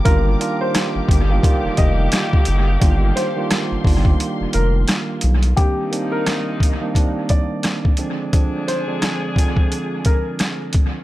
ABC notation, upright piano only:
X:1
M:4/4
L:1/16
Q:"Swing 16ths" 1/4=87
K:Cm
V:1 name="Upright piano"
B3 c2 z4 z e6 | z2 c3 z4 z B z4 z | G3 B2 z4 z d6 | z2 c3 z4 z B z4 z |]